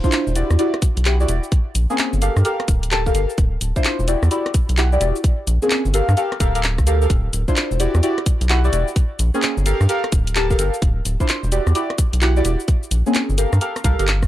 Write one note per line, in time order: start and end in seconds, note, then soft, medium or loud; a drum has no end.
0.04 0.34 D4 medium
0.04 0.34 E4 medium
0.04 0.34 F4 medium
0.04 0.34 C5 loud
0.04 kick medium
0.04 cabasa soft
0.12 clap loud
0.12 closed hi-hat medium
0.12 cabasa soft
0.27 0.43 E1 medium
0.27 cabasa soft
0.36 0.57 E4 medium
0.36 0.57 F#4 medium
0.36 0.57 G4 medium
0.36 0.57 D5 medium
0.36 closed hi-hat loud
0.36 cabasa medium
0.50 0.57 E2 loud
0.50 cross-stick medium
0.50 cabasa soft
0.59 0.75 E4 medium
0.59 0.75 F#4 medium
0.59 0.75 G4 medium
0.59 0.75 D5 loud
0.59 closed hi-hat medium
0.59 cabasa soft
0.74 cross-stick medium
0.74 closed hi-hat soft
0.82 kick loud
0.82 closed hi-hat loud
0.82 cabasa medium
0.97 1.25 B1 medium
0.97 closed hi-hat medium
0.97 cabasa soft
1.05 1.16 E4 medium
1.05 1.16 F#4 medium
1.05 1.16 G4 medium
1.05 1.16 F#5 medium
1.05 clap loud
1.05 closed hi-hat medium
1.05 cabasa soft
1.20 1.26 E4 medium
1.20 1.26 F#4 medium
1.20 1.26 G4 medium
1.20 1.26 D5 medium
1.20 cabasa soft
1.28 1.40 E1 loud
1.28 1.45 E4 medium
1.28 1.45 F#4 medium
1.28 1.45 G4 medium
1.28 1.45 D5 medium
1.28 closed hi-hat loud
1.28 cabasa medium
1.43 cabasa soft
1.52 kick loud
1.52 closed hi-hat medium
1.52 cabasa soft
1.75 1.86 A#1 medium
1.75 closed hi-hat loud
1.75 cabasa medium
1.90 2.20 A#3 medium
1.90 2.20 C4 medium
1.90 2.20 C#4 medium
1.90 2.20 G#4 loud
1.90 cabasa soft
1.98 clap loud
1.98 closed hi-hat medium
1.98 cabasa soft
2.13 2.29 G1 medium
2.13 cabasa soft
2.22 2.43 G4 medium
2.22 2.43 A4 medium
2.22 2.43 A#4 medium
2.22 2.43 F5 medium
2.22 closed hi-hat loud
2.22 cabasa medium
2.36 2.43 G2 loud
2.36 cross-stick medium
2.36 cabasa soft
2.45 2.61 G4 medium
2.45 2.61 A4 medium
2.45 2.61 A#4 medium
2.45 2.61 F5 loud
2.45 closed hi-hat medium
2.45 cabasa soft
2.60 cross-stick medium
2.60 closed hi-hat soft
2.68 3.11 D1 medium
2.68 kick loud
2.68 closed hi-hat loud
2.68 cabasa medium
2.83 closed hi-hat medium
2.83 cabasa soft
2.91 3.02 G4 medium
2.91 3.02 A4 medium
2.91 3.02 A#4 medium
2.91 3.02 A5 medium
2.91 clap loud
2.91 closed hi-hat medium
2.91 cabasa soft
3.06 3.12 G4 medium
3.06 3.12 A4 medium
3.06 3.12 A#4 medium
3.06 3.12 F5 medium
3.06 kick medium
3.06 cabasa soft
3.15 3.26 G1 loud
3.15 3.31 G4 medium
3.15 3.31 A4 medium
3.15 3.31 A#4 medium
3.15 3.31 F5 medium
3.15 closed hi-hat loud
3.15 cabasa medium
3.30 cabasa soft
3.38 3.57 D1 loud
3.38 kick loud
3.38 closed hi-hat medium
3.38 cabasa soft
3.61 3.72 D1 medium
3.61 closed hi-hat loud
3.61 cabasa medium
3.76 4.06 D4 medium
3.76 4.06 E4 medium
3.76 4.06 F4 medium
3.76 4.06 C5 loud
3.76 kick medium
3.76 cabasa soft
3.84 clap loud
3.84 closed hi-hat medium
3.84 cabasa soft
3.99 4.15 E1 medium
3.99 cabasa soft
4.08 4.29 E4 medium
4.08 4.29 F#4 medium
4.08 4.29 G4 medium
4.08 4.29 D5 medium
4.08 closed hi-hat loud
4.08 cabasa medium
4.23 4.29 E2 loud
4.23 cross-stick medium
4.23 cabasa soft
4.31 4.47 E4 medium
4.31 4.47 F#4 medium
4.31 4.47 G4 medium
4.31 4.47 D5 medium
4.31 closed hi-hat medium
4.31 cabasa soft
4.46 cross-stick medium
4.46 closed hi-hat soft
4.54 kick loud
4.54 closed hi-hat loud
4.54 cabasa medium
4.69 4.97 B1 medium
4.69 closed hi-hat medium
4.69 cabasa soft
4.77 4.88 E4 medium
4.77 4.88 F#4 medium
4.77 4.88 G4 medium
4.77 4.88 F#5 medium
4.77 clap loud
4.77 closed hi-hat medium
4.77 cabasa soft
4.92 4.98 E4 medium
4.92 4.98 F#4 medium
4.92 4.98 G4 medium
4.92 4.98 D5 medium
4.92 cabasa soft
5.01 5.12 E1 loud
5.01 5.17 E4 medium
5.01 5.17 F#4 medium
5.01 5.17 G4 medium
5.01 5.17 D5 medium
5.01 closed hi-hat loud
5.01 cabasa medium
5.16 cabasa soft
5.24 kick loud
5.24 closed hi-hat medium
5.24 cabasa soft
5.47 5.58 A#1 medium
5.47 closed hi-hat loud
5.47 cabasa medium
5.62 5.92 A#3 medium
5.62 5.92 C4 medium
5.62 5.92 C#4 medium
5.62 5.92 G#4 loud
5.62 cabasa soft
5.71 clap loud
5.71 closed hi-hat medium
5.71 cabasa soft
5.85 6.01 G1 medium
5.85 cabasa soft
5.94 6.15 G4 medium
5.94 6.15 A4 medium
5.94 6.15 A#4 medium
5.94 6.15 F5 medium
5.94 closed hi-hat loud
5.94 cabasa medium
6.09 6.15 G2 loud
6.09 cross-stick medium
6.09 cabasa soft
6.17 6.33 G4 medium
6.17 6.33 A4 medium
6.17 6.33 A#4 medium
6.17 6.33 F5 loud
6.17 closed hi-hat medium
6.17 cabasa soft
6.32 cross-stick medium
6.32 closed hi-hat soft
6.40 6.80 D1 medium
6.40 6.53 G4 loud
6.40 6.53 A4 medium
6.40 6.53 A#4 medium
6.40 6.53 F5 loud
6.40 kick loud
6.40 closed hi-hat loud
6.40 cabasa medium
6.55 6.61 G4 medium
6.55 6.61 A4 medium
6.55 6.61 A#4 medium
6.55 6.61 F5 loud
6.55 closed hi-hat medium
6.55 cabasa soft
6.63 clap loud
6.63 closed hi-hat medium
6.63 cabasa soft
6.78 7.07 D2 loud
6.78 kick medium
6.78 cross-stick medium
6.78 cabasa soft
6.87 6.99 G4 medium
6.87 6.99 A4 medium
6.87 6.99 A#4 medium
6.87 6.99 F5 loud
6.87 closed hi-hat loud
6.87 cabasa medium
7.02 7.08 G4 medium
7.02 7.07 A4 medium
7.02 7.08 A#4 medium
7.02 7.07 F5 medium
7.02 cabasa soft
7.10 7.29 D1 loud
7.10 kick loud
7.10 closed hi-hat medium
7.10 cabasa soft
7.33 7.44 D1 medium
7.33 closed hi-hat loud
7.33 cabasa medium
7.48 7.78 D4 medium
7.48 7.78 E4 medium
7.48 7.78 F4 medium
7.48 7.78 C5 loud
7.48 kick medium
7.48 cabasa soft
7.57 clap loud
7.57 closed hi-hat medium
7.57 cabasa soft
7.71 7.87 E1 medium
7.71 cabasa soft
7.80 8.01 E4 medium
7.80 8.01 F#4 medium
7.80 8.01 G4 medium
7.80 8.01 D5 medium
7.80 closed hi-hat loud
7.80 cabasa medium
7.95 8.01 E2 loud
7.95 cross-stick medium
7.95 cabasa soft
8.03 8.19 E4 medium
8.03 8.19 F#4 medium
8.03 8.19 G4 medium
8.03 8.19 D5 medium
8.03 closed hi-hat medium
8.03 cabasa soft
8.18 cross-stick medium
8.18 closed hi-hat soft
8.26 kick loud
8.26 closed hi-hat loud
8.26 cabasa medium
8.41 8.69 B1 medium
8.41 closed hi-hat medium
8.41 cabasa soft
8.49 8.60 E4 medium
8.49 8.60 F#4 medium
8.49 8.60 G4 medium
8.49 8.60 F#5 loud
8.49 clap loud
8.49 closed hi-hat medium
8.49 cabasa soft
8.64 8.70 E4 medium
8.64 8.70 F#4 medium
8.64 8.70 G4 medium
8.64 8.70 D5 medium
8.64 cabasa soft
8.73 8.84 E1 loud
8.73 8.89 E4 medium
8.73 8.89 F#4 medium
8.73 8.89 G4 medium
8.73 8.89 D5 medium
8.73 closed hi-hat loud
8.73 cabasa medium
8.88 cabasa soft
8.96 kick loud
8.96 closed hi-hat medium
8.96 cabasa soft
9.19 9.31 A#1 medium
9.19 closed hi-hat loud
9.19 cabasa medium
9.34 9.64 A#3 medium
9.34 9.64 C4 medium
9.34 9.64 C#4 medium
9.34 9.64 G#4 loud
9.34 cabasa soft
9.43 clap loud
9.43 closed hi-hat medium
9.43 cabasa soft
9.57 9.73 G1 medium
9.57 cabasa soft
9.66 9.87 G4 medium
9.66 9.87 A4 medium
9.66 9.87 A#4 medium
9.66 9.87 F5 medium
9.66 closed hi-hat loud
9.66 cabasa medium
9.81 9.87 G2 loud
9.81 cross-stick medium
9.81 cabasa soft
9.89 10.05 G4 medium
9.89 10.05 A4 medium
9.89 10.05 A#4 medium
9.89 10.05 F5 loud
9.89 closed hi-hat medium
9.89 cabasa soft
10.04 cross-stick medium
10.04 closed hi-hat soft
10.12 10.56 D1 medium
10.12 kick loud
10.12 closed hi-hat loud
10.12 cabasa medium
10.27 closed hi-hat medium
10.27 cabasa soft
10.36 10.46 G4 medium
10.36 10.46 A4 medium
10.36 10.46 A#4 medium
10.36 10.46 A5 loud
10.36 clap loud
10.36 closed hi-hat medium
10.36 cabasa soft
10.50 10.56 G4 medium
10.50 10.56 A4 medium
10.50 10.56 A#4 medium
10.50 10.56 F5 medium
10.50 kick medium
10.50 cabasa soft
10.59 10.70 G1 loud
10.59 10.75 G4 medium
10.59 10.75 A4 medium
10.59 10.75 A#4 medium
10.59 10.75 F5 medium
10.59 closed hi-hat loud
10.59 cabasa medium
10.74 cabasa soft
10.82 11.01 D1 loud
10.82 kick loud
10.82 closed hi-hat medium
10.82 cabasa soft
11.05 11.17 D1 medium
11.05 closed hi-hat loud
11.05 cabasa medium
11.20 11.50 D4 medium
11.20 11.50 E4 medium
11.20 11.50 F4 medium
11.20 11.50 C5 loud
11.20 kick medium
11.20 cabasa soft
11.29 clap loud
11.29 closed hi-hat medium
11.29 cabasa soft
11.43 11.59 E1 medium
11.43 cabasa soft
11.52 11.73 E4 medium
11.52 11.73 F#4 medium
11.52 11.73 G4 medium
11.52 11.73 D5 medium
11.52 closed hi-hat loud
11.52 cabasa medium
11.67 11.73 E2 loud
11.67 cross-stick medium
11.67 cabasa soft
11.75 11.91 E4 medium
11.75 11.91 F#4 medium
11.75 11.91 G4 medium
11.75 11.91 D5 loud
11.75 closed hi-hat medium
11.75 cabasa soft
11.90 cross-stick medium
11.90 closed hi-hat soft
11.98 kick loud
11.98 closed hi-hat loud
11.98 cabasa medium
12.13 12.42 B1 medium
12.13 closed hi-hat medium
12.13 cabasa soft
12.22 12.32 E4 medium
12.22 12.32 F#4 medium
12.22 12.32 G4 medium
12.22 12.32 F#5 loud
12.22 clap loud
12.22 closed hi-hat medium
12.22 cabasa soft
12.36 12.42 E4 medium
12.36 12.42 F#4 medium
12.36 12.42 G4 medium
12.36 12.42 D5 medium
12.36 cabasa soft
12.45 12.56 E1 loud
12.45 12.61 E4 medium
12.45 12.61 F#4 medium
12.45 12.61 G4 medium
12.45 12.61 D5 medium
12.45 closed hi-hat loud
12.45 cabasa medium
12.60 cabasa soft
12.68 kick loud
12.68 closed hi-hat medium
12.68 cabasa soft
12.83 cabasa soft
12.91 13.03 A#1 medium
12.91 closed hi-hat loud
12.91 cabasa medium
13.06 13.36 A#3 medium
13.06 13.36 C4 medium
13.06 13.36 C#4 medium
13.06 13.36 G#4 loud
13.06 cabasa soft
13.15 clap loud
13.15 closed hi-hat medium
13.15 cabasa soft
13.29 13.45 G1 medium
13.29 cabasa soft
13.38 13.59 G4 medium
13.38 13.59 A4 medium
13.38 13.59 A#4 medium
13.38 13.59 F5 medium
13.38 closed hi-hat loud
13.38 cabasa medium
13.53 13.59 G2 loud
13.53 cross-stick medium
13.53 cabasa soft
13.61 13.77 G4 medium
13.61 13.77 A4 medium
13.61 13.77 A#4 medium
13.61 13.77 F5 loud
13.61 closed hi-hat medium
13.61 cabasa soft
13.76 cross-stick medium
13.76 closed hi-hat soft
13.76 cabasa soft
13.84 13.96 C2 loud
13.84 13.97 G4 loud
13.84 13.97 A4 medium
13.84 13.97 A#4 medium
13.84 13.97 F5 loud
13.84 kick loud
13.84 closed hi-hat loud
13.84 cabasa medium
13.99 14.28 G1 loud
13.99 14.05 G4 loud
13.99 14.05 A4 medium
13.99 14.05 A#4 medium
13.99 14.05 F5 loud
13.99 closed hi-hat medium
13.99 cabasa soft
14.08 clap loud
14.08 closed hi-hat medium
14.08 cabasa soft
14.23 kick medium
14.23 cross-stick medium
14.23 cabasa soft